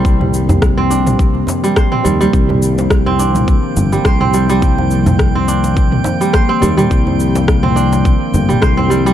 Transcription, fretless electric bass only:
X:1
M:4/4
L:1/8
Q:"Swing 16ths" 1/4=105
K:Cm
V:1 name="Fretless electric bass" clef=bass
C,,4- C,, z2 E,, | C,,4 z G,,, C,,2- | C,,4- C,, z2 E,, | C,,4 z G,,, C,,2 |]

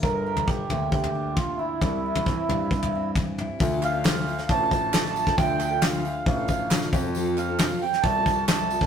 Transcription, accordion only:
X:1
M:4/4
L:1/8
Q:1/4=135
K:Dm
V:1 name="Accordion"
B2 G2 G2 F E- | E6 z2 | z f3 a2 a2 | g2 f2 f3 z |
z f2 g a2 a2 |]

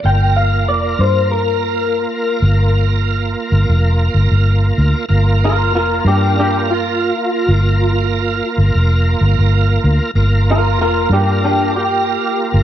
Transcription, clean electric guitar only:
X:1
M:4/4
L:1/8
Q:"Swing 16ths" 1/4=95
K:Gm
V:1 name="Clean electric guitar"
g f d c B4- | B6 z2 | z [FB] [FB] [DG] [DG] F3- | F3 z4 z |
z [FB] [FB] [DG] [DG] G3 |]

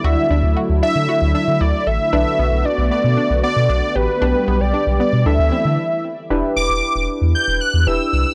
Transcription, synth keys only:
X:1
M:4/4
L:1/8
Q:1/4=115
K:Em
V:1 name="Synth keys"
[DEF]8 | [DAB]8 | [DGB]4 [DEA]2 z2 | [DEGB]6 [DEGB]2 |]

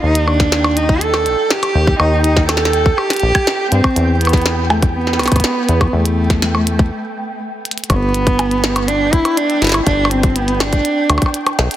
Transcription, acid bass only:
X:1
M:4/4
L:1/8
Q:1/4=122
K:G
V:1 name="Acid bass" clef=bass
_E,,4- E,, _B,,, z E,, | _E,,4 z _B,,, z G,, | E,,4- E,, B,,, z E,, | E,,4 z4 |
G,,,4- G,,, D,,, z G,,, | G,,,4 z D,, z B,,, |]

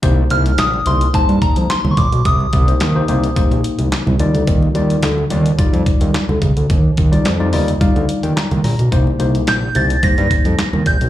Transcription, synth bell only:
X:1
M:4/4
L:1/16
Q:1/4=108
K:Cm
V:1 name="Synth bell"
z2 f'2 e'2 c'2 =a2 b2 c'3/2 _d'/2 =d'2 | e'8 z8 | z16 | z16 |
z4 g'2 =a'2 b'6 g'2 |]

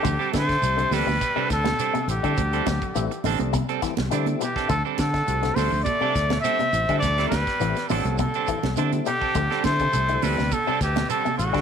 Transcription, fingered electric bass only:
X:1
M:4/4
L:1/16
Q:1/4=103
K:Clyd
V:1 name="Fingered electric bass" clef=bass
D,, z D,2 C,,2 D,, D,, z2 D,,2 z2 A,,, D, | D,,2 D,, z A,,, z A,,, C,,2 z2 C,, D,2 z2 | D,, z D,2 C,,2 D,, D,, z2 D,,2 z2 A,,, D, | D,,2 D,, z A,,, z A,,, C,,2 z2 C,, D,2 z2 |
D,, z D,2 C,,2 D,, D,, z2 D,,2 z2 A,,, D, |]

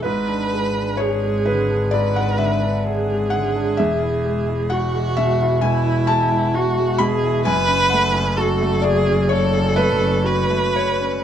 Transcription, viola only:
X:1
M:4/4
L:1/8
Q:1/4=65
K:F#m
V:1 name="Viola"
B2 G2 B2 G2- | G2 F2 E2 F G | B2 A G A2 B2 |]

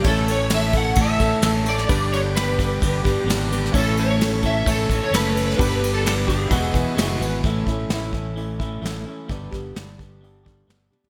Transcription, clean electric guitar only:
X:1
M:4/4
L:1/8
Q:1/4=130
K:Amix
V:1 name="Clean electric guitar"
[A,,E,A,CA] [A,CA] [E,A,CA] [A,,E,A,CA] [E,A,CA] [A,CA] [A,,E,A,CA] [A,CA] | [G,,D,G,B,DG] [G,B,DG] [G,B,DG] [G,,D,G,B,DG] [G,B,DG] [G,B,DG] [G,,D,G,B,DG] [G,B,DG] | [A,,E,A,CA] [A,CA] [E,A,CA] [A,,E,A,CA] [E,A,CA] [A,CA] [A,,E,A,CA] [A,CA] | [G,,D,G,B,DG] [G,B,DG] [G,B,DG] [G,,D,G,B,DG] [E,,B,,E,^G,B,F] [E,G,B,F] [E,,B,,E,G,B,F] [E,G,B,F] |
[A,,E,A,CE] [A,CE] [A,,E,A,CE] [A,CE] [E,A,CE] [A,,E,A,CE] [E,A,CE] [A,CE] | [G,,D,G,B,DG] [G,B,DG] [G,,D,G,B,DG] [G,B,DG] [G,B,DG] [G,,D,G,B,DG] [G,B,DG] [G,B,DG] |]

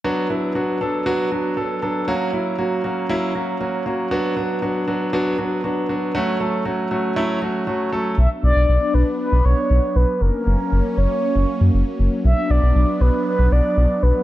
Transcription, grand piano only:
X:1
M:4/4
L:1/8
Q:1/4=118
K:Bm
V:1 name="Grand piano"
[F,B,DF] [F,B,DE] [F,B,DF] [F,B,DA] [F,B,DF] [F,B,DF] [F,B,DA] [F,B,DA] | [F,^A,CF] [F,A,CE] [F,A,CF] [F,A,CF] [F,A,CE] [F,A,CF] [F,A,CF] [F,A,CF] | [F,B,DF] [F,B,DF] [F,B,DF] [F,B,DF] [F,B,DF] [F,B,DF] [F,B,DF] [F,B,DF] | [F,A,CF] [F,A,CA] [F,A,CF] [F,A,CF] [F,A,CE] [F,A,CF] [F,A,CF] [F,A,CA] |
z8 | z8 | z8 |]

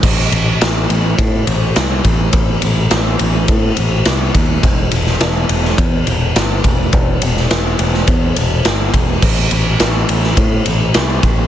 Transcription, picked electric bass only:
X:1
M:4/4
L:1/8
Q:1/4=104
K:Am
V:1 name="Picked electric bass" clef=bass
A,,, A,,, A,,, A,,, A,, A,,, C,, A,,, | A,,, A,,, A,,, A,,, A,, A,,, C,, ^D,, | E,,, E,,, E,,, E,,, E,, E,,, G,,, E,,, | E,,, E,,, E,,, E,,, E,, E,,, G,,, E,,, |
A,,, A,,, A,,, A,,, A,, A,,, C,, A,,, |]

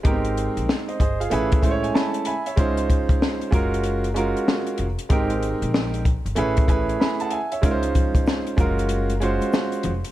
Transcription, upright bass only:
X:1
M:4/4
L:1/16
Q:"Swing 16ths" 1/4=95
K:Db
V:1 name="Upright bass" clef=bass
A,,,3 B,,, z2 =G,,,2 =A,,,2 A,,,2 z4 | D,,3 D,, z2 G,,,4- G,,, z3 F,,, z | A,,,3 B,,,4 =G,,, =A,,,2 A,,,2 z4 | D,,3 D,, z2 G,,,4- G,,, z3 F,,, z |]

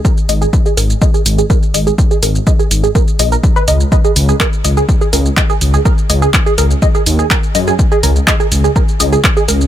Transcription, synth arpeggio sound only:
X:1
M:4/4
L:1/16
Q:1/4=124
K:C#dor
V:1 name="Synth arpeggio sound"
A z d G z G A z d G z G A z d G | z G A z d G z G A z d A z B d z | d G z G A z d G z G A z d G z G | A z d G z G A z d G z G A z d G |
z G A z d G z G A z d G z G A z |]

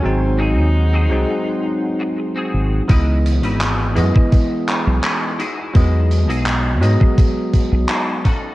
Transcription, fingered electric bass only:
X:1
M:4/4
L:1/16
Q:1/4=84
K:C#m
V:1 name="Fingered electric bass" clef=bass
G,,,3 D,,3 ^B,,, z6 z G,,, z | C,,3 G,,,3 F,, z4 B,,, z4 | E,,3 B,,,3 G,, z4 B,,, z4 |]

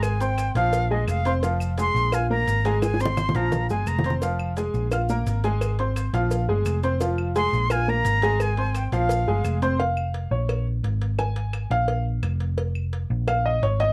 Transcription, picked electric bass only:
X:1
M:4/4
L:1/8
Q:1/4=172
K:Bbdor
V:1 name="Picked electric bass" clef=bass
A,,,3 B,,,3 F,,,2- | F,,,3 B,,,3 A,,,2- | A,,,3 B,,,2 G,,, F,,,2- | F,,,3 B,,,3 A,,,2- |
A,,,3 B,,,2 G,,, F,,,2- | F,,,3 B,,,3 A,,,2- | A,,,3 B,,,2 G,,, F,,,2- | F,,,3 B,,,3 A,,,2- |
A,,,3 B,,,3 F,,,2- | F,,,3 B,,,3 A,,,2 |]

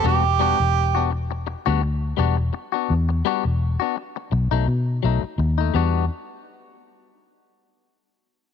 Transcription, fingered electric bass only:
X:1
M:4/4
L:1/16
Q:"Swing 16ths" 1/4=84
K:Em
V:1 name="Fingered electric bass" clef=bass
E,,,3 E,,,6 D,,3 E,,,2 z2 | E,,2 z E,,,2 z3 B,,, B,,, B,,2 B,,, z ^D,,2 | E,,2 z12 z2 |]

